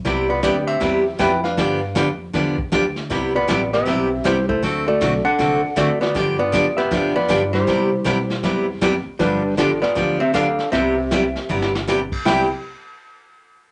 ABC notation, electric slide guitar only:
X:1
M:4/4
L:1/8
Q:"Swing" 1/4=157
K:C
V:1 name="Electric slide guitar"
z [Fd] [Gd] [Ge]3 [Bg] [Bf]- | [Bf]3 z4 z | z [Fd]2 [Ge]3 [Ec] [Ec] | z [^Fd]2 [A^f]3 [Fd] [Fd] |
z [Fd]2 [Ge]2 [Fd]2 [Ec]- | [Ec]6 z2 | [DB]2 [DA] [Fd]2 [Ge] [Af]2 | [Ge]6 z2 |
g z6 z |]